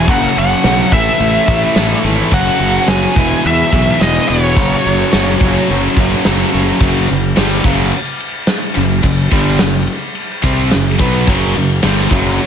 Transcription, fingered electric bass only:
0.08 0.26 F#1 loud
0.37 0.54 F#1 medium
0.65 0.82 B1 medium
0.93 1.10 A1 medium
1.20 1.37 A1 loud
1.48 1.65 A1 loud
1.76 1.93 A1 medium
2.04 2.21 G#1 loud
2.32 2.49 F#1 loud
2.61 2.78 F#1 medium
2.88 3.05 F#1 medium
3.16 3.33 E1 medium
3.45 3.62 E2 loud
3.73 3.90 B1 loud
4.01 4.18 E1 loud
4.30 4.57 E1 medium
4.57 4.74 F#1 loud
4.86 5.03 F#1 medium
5.15 5.40 F#1 loud
5.41 5.58 F#1 medium
5.70 5.87 F#1 loud
5.97 6.14 F#1 medium
6.27 6.43 F#1 medium
6.55 6.71 F#1 medium
6.81 7.07 F#1 loud
7.11 7.36 F#1 medium
7.39 7.63 G1 loud
7.65 7.90 F#1 medium
8.77 9.03 F#1 medium
9.04 9.30 F#1 medium
9.32 9.58 G1 medium
9.62 9.87 F#1 medium
10.44 10.70 C2 medium
10.74 10.99 F#1 medium
11.00 11.26 B1 medium
11.28 11.54 F#1 loud
11.57 11.82 F#1 medium
11.85 12.10 G1 medium
12.11 12.37 F#1 loud

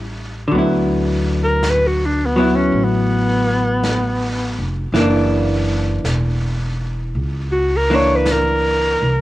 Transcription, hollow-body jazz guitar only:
0.00 0.49 G3 soft
0.00 0.52 C#4 soft
0.00 0.55 E4 soft
0.48 4.92 D3 soft
0.52 2.35 F#3 soft
0.52 2.37 B3 soft
0.58 2.38 E4 soft
2.36 4.93 F#3 soft
2.36 4.95 B3 soft
2.36 4.96 E4 soft
4.94 7.89 E3 soft
4.94 7.90 A#3 soft
4.99 7.92 D4 soft
7.90 9.21 E3 soft
7.90 9.21 A#3 soft
7.90 9.21 D4 soft

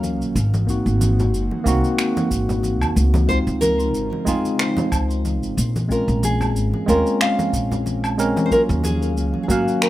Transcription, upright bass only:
0.00 0.21 D#2 medium
0.21 0.33 A#1 medium
0.35 0.81 G#1 medium
0.86 1.33 G#1 medium
1.33 1.48 F#1 medium
1.66 1.81 C2 medium
2.31 2.82 G#1 medium
2.82 2.94 D#2 medium
2.96 3.42 C#2 medium
3.47 3.94 C#2 medium
3.94 4.09 G#1 medium
4.27 4.42 F2 medium
4.92 5.43 C#2 medium
5.43 5.55 G#1 medium
5.57 6.03 A#1 medium
6.08 6.55 A#1 medium
6.55 6.70 G#1 medium
6.88 7.03 D#2 medium
7.53 8.31 A#1 medium
8.69 9.17 D#2 loud
9.17 9.31 C#2 medium
9.49 9.63 G#2 medium

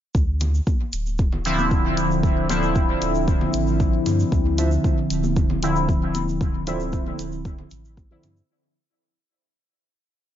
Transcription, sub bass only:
0.15 0.60 D2 medium
0.93 2.95 D1 medium
3.02 3.47 D1 medium
3.54 4.00 A1 loud
4.06 4.24 G2 loud
4.32 4.78 D2 loud
5.10 7.13 D1 medium
7.19 7.65 D1 medium
7.71 8.17 A1 loud
8.23 8.41 G2 loud

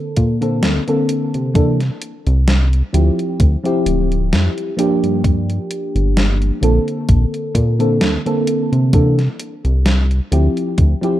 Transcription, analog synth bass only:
0.17 0.65 A#2 loud
0.63 0.80 D2 medium
1.35 1.90 C3 medium
2.27 2.82 C2 loud
2.94 3.10 D2 loud
3.40 3.57 D2 medium
3.86 4.34 D1 loud
4.32 4.49 F2 medium
5.03 5.59 G2 medium
5.95 6.51 G1 medium
6.62 6.79 A#1 loud
7.09 7.26 A#1 medium
7.55 8.02 A#2 loud
8.01 8.18 D2 medium
8.72 9.28 C3 medium
9.65 10.21 C2 loud
10.32 10.49 D2 loud
10.78 10.95 D2 medium

